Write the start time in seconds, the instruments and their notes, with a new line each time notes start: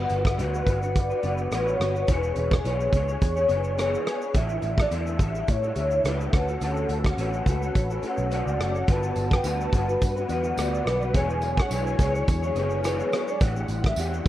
Already playing: clean electric guitar G3 B3 D4 F#4 B4, soft synth lead F#5
0.09 picked electric bass G1, closed hi-hat, shaker
0.24 clean electric guitar D4 F#4 B4, soft synth lead E5, kick, cross-stick, shaker
0.37 picked electric bass D2, clean electric guitar G3 B3 D4 F#4 B4, closed hi-hat, shaker
0.41 soft synth lead F#5
0.54 shaker
0.65 picked electric bass G1, clean electric guitar B3 D4 F#4 B4, kick, closed hi-hat, shaker
0.81 clean electric guitar F#4 B4, shaker
0.85 clean electric guitar D4
0.96 soft synth lead D5, kick, closed hi-hat, shaker
1.10 clean electric guitar D4 F#4 B4, shaker
1.22 picked electric bass F#1, clean electric guitar B3 D4 F#4, closed hi-hat, shaker
1.27 clean electric guitar B4
1.38 shaker
1.52 picked electric bass A1, clean electric guitar G3 B3 D4 F#4 B4, soft synth lead C#5, cross-stick, closed hi-hat, shaker
1.68 shaker
1.80 picked electric bass G1, clean electric guitar B3 D4 F#4 B4, cross-stick, closed hi-hat, shaker
1.95 clean electric guitar D4 F#4 B4, shaker
2.08 picked electric bass E1, clean electric guitar E3 B3 D4 G#4 C#5, soft synth lead B4, kick, closed hi-hat, shaker
2.23 shaker
2.36 picked electric bass E1, soft synth lead B4, closed hi-hat, shaker
2.51 clean electric guitar D4 G#4 C#5, kick, cross-stick, shaker
2.64 picked electric bass B1, clean electric guitar E3 B3 D4 G#4 C#5, soft synth lead C#5, closed hi-hat, shaker
2.80 shaker
2.93 picked electric bass C#2, clean electric guitar B3 D4 G#4 C#5, kick, closed hi-hat, shaker
3.08 clean electric guitar G#4 C#5, shaker
3.12 clean electric guitar D4
3.22 picked electric bass E2, kick, closed hi-hat, shaker
3.36 clean electric guitar D4 G#4 C#5, shaker
3.48 picked electric bass F#1, clean electric guitar B3 D4 G#4 C#5, closed hi-hat, shaker
3.64 shaker
3.77 clean electric guitar E3 B3 D4 G#4 C#5, soft synth lead G#4, cross-stick, closed hi-hat, shaker
3.94 shaker
4.05 clean electric guitar B3 D4 G#4 C#5, cross-stick, closed hi-hat, shaker
4.20 clean electric guitar G#4 C#5, soft synth lead B4, shaker
4.24 clean electric guitar D4
4.34 picked electric bass A1, clean electric guitar A2 D3 G3 D4 E4 A4, soft synth lead E5, kick, closed hi-hat, shaker
4.49 shaker
4.62 picked electric bass A1, closed hi-hat, shaker
4.78 clean electric guitar G3 D4 E4 A4, soft synth lead D5, kick, cross-stick, shaker
4.90 picked electric bass E2, clean electric guitar A2 D3 G3 D4 E4 A4, soft synth lead E5, closed hi-hat, shaker
5.07 shaker
5.19 picked electric bass A1, clean electric guitar G3 D4 E4 A4, kick, closed hi-hat, shaker
5.35 clean electric guitar G3 D4 E4 A4, shaker
5.48 picked electric bass A2, soft synth lead C#5, kick, closed hi-hat, shaker
5.63 clean electric guitar G3 D4 E4 A4, shaker
5.76 picked electric bass D2, clean electric guitar G3 D4 E4 A4, closed hi-hat, shaker
5.91 shaker
6.04 picked electric bass C#2, clean electric guitar A2 D3 G3 D4 E4 A4, soft synth lead B4, cross-stick, closed hi-hat, shaker
6.21 shaker
6.32 picked electric bass D2, clean electric guitar A3 C#4 F#4 A4, kick, cross-stick, closed hi-hat, shaker
6.48 clean electric guitar C#4 F#4 A4, shaker
6.61 picked electric bass D2, clean electric guitar D3 A3 C#4 F#4 A4, soft synth lead A4, closed hi-hat, shaker
6.76 shaker
6.89 picked electric bass D2, soft synth lead A4, closed hi-hat, shaker
7.04 clean electric guitar C#4 F#4 A4, kick, cross-stick, shaker
7.17 picked electric bass A1, clean electric guitar D3 A3 C#4 F#4 A4, soft synth lead B4, closed hi-hat, shaker
7.33 shaker
7.46 picked electric bass C#2, clean electric guitar A3 C#4 F#4 A4, kick, closed hi-hat, shaker
7.61 clean electric guitar F#4 A4, shaker
7.65 clean electric guitar C#4
7.75 picked electric bass A1, kick, closed hi-hat, shaker
7.90 clean electric guitar C#4 F#4 A4, shaker
8.02 clean electric guitar A3 C#4 F#4 A4, closed hi-hat, shaker
8.17 picked electric bass B1, shaker
8.30 clean electric guitar D3 A3 C#4 F#4 A4, soft synth lead D5, closed hi-hat, shaker
8.46 picked electric bass C#2, shaker
8.59 picked electric bass F#1, clean electric guitar A3 C#4 F#4 A4, cross-stick, closed hi-hat, shaker
8.75 clean electric guitar C#4 F#4 A4, soft synth lead F#5, shaker
8.87 picked electric bass G1, string machine D3 G3 B3 F#4, clean electric guitar G3 B3 D4 F#4 B4, kick, closed hi-hat, shaker
8.92 soft synth lead A5
9.03 shaker
9.16 picked electric bass G1, closed hi-hat, tambourine, shaker
9.31 clean electric guitar D4 F#4 B4, kick, cross-stick, shaker
9.36 soft synth lead G5
9.43 picked electric bass D2, clean electric guitar G3 B3 D4 F#4 B4, closed hi-hat, tambourine, shaker
9.48 soft synth lead A5
9.61 shaker
9.72 picked electric bass G1, clean electric guitar B3 D4 F#4 B4, kick, closed hi-hat, tambourine, shaker
9.87 clean electric guitar F#4 B4, shaker
9.91 clean electric guitar D4
10.02 picked electric bass G2, kick, closed hi-hat, tambourine, shaker
10.15 clean electric guitar D4 F#4 B4, shaker
10.28 picked electric bass E2, clean electric guitar B3 D4 F#4 B4, closed hi-hat, tambourine, shaker
10.44 shaker
10.57 picked electric bass D2, clean electric guitar G3 B3 D4 F#4 B4, cross-stick, closed hi-hat, tambourine, shaker
10.61 soft synth lead D5
10.74 shaker
10.85 picked electric bass B1, clean electric guitar B3 D4 F#4 B4, cross-stick, closed hi-hat, shaker
11.01 clean electric guitar D4 F#4 B4, soft synth lead F#5, shaker
11.13 picked electric bass E1, clean electric guitar E3 B3 D4 G#4 C#5, string machine F#3 G#3 E4 C#5, kick, closed hi-hat, tambourine, shaker
11.17 soft synth lead G#5
11.30 shaker
11.42 closed hi-hat, tambourine, shaker
11.57 clean electric guitar G#4 C#5, kick, cross-stick, shaker
11.61 clean electric guitar D4, soft synth lead F#5
11.70 picked electric bass B1, clean electric guitar E3 B3 D4 G#4 C#5, closed hi-hat, tambourine, shaker
11.74 soft synth lead G#5
11.87 shaker
11.98 picked electric bass C#2, clean electric guitar B3 D4 G#4 C#5, kick, closed hi-hat, tambourine, shaker
12.14 clean electric guitar G#4 C#5, shaker
12.18 clean electric guitar D4
12.28 picked electric bass E2, kick, closed hi-hat, tambourine, shaker
12.42 clean electric guitar D4 G#4 C#5, shaker
12.55 picked electric bass F#1, clean electric guitar B3 D4 G#4 C#5, closed hi-hat, tambourine, shaker
12.70 shaker
12.84 clean electric guitar E3 B3 D4 G#4 C#5, soft synth lead B4, cross-stick, closed hi-hat, tambourine, shaker
13.00 shaker
13.12 clean electric guitar B3 D4 G#4 C#5, cross-stick, closed hi-hat, tambourine, shaker
13.27 clean electric guitar D4 G#4 C#5, soft synth lead D5, shaker
13.40 picked electric bass A1, clean electric guitar A2 E3 G3 D4 G4, string machine E3 G3 A3 D4 G4, soft synth lead F#5, kick, closed hi-hat, tambourine, shaker
13.56 shaker
13.68 picked electric bass A1, closed hi-hat, tambourine, shaker
13.84 clean electric guitar D4 G4, soft synth lead E5, kick, cross-stick, shaker
13.88 clean electric guitar G3
13.96 picked electric bass E2, clean electric guitar A2 E3 G3 D4 G4, soft synth lead F#5, closed hi-hat, tambourine, shaker
14.14 shaker
14.25 clean electric guitar E3